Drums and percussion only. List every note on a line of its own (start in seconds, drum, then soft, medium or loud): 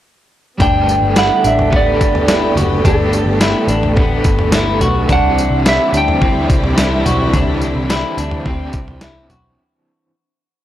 0.60 kick medium
0.60 floor tom loud
0.60 tambourine medium
0.89 tambourine medium
1.16 snare loud
1.16 tambourine medium
1.44 tambourine medium
1.59 floor tom medium
1.73 kick medium
1.73 floor tom medium
2.01 kick medium
2.01 tambourine medium
2.15 floor tom medium
2.28 snare loud
2.28 tambourine medium
2.57 floor tom medium
2.57 tambourine medium
2.85 kick medium
2.85 floor tom loud
2.85 tambourine medium
3.13 tambourine medium
3.41 snare loud
3.41 tambourine medium
3.68 tambourine medium
3.83 floor tom medium
3.97 kick medium
3.97 floor tom medium
4.24 kick medium
4.24 tambourine medium
4.39 floor tom medium
4.52 snare loud
4.52 tambourine medium
4.81 floor tom medium
4.81 tambourine medium
5.09 kick medium
5.09 floor tom medium
5.09 tambourine medium
5.38 tambourine medium
5.66 snare loud
5.66 tambourine medium
5.94 tambourine medium
6.08 floor tom medium
6.22 kick medium
6.22 floor tom medium
6.50 kick medium
6.50 tambourine medium
6.64 floor tom medium
6.78 snare loud
6.78 tambourine medium
7.06 floor tom medium
7.06 tambourine medium
7.33 kick loud
7.33 floor tom medium
7.33 tambourine medium
7.62 tambourine medium
7.90 snare loud
7.90 tambourine medium
8.18 tambourine medium
8.31 floor tom medium
8.46 kick medium
8.46 floor tom medium
8.73 kick loud
8.73 tambourine medium
8.88 floor tom medium
9.01 snare loud
9.01 tambourine medium
9.30 floor tom medium
9.30 tambourine medium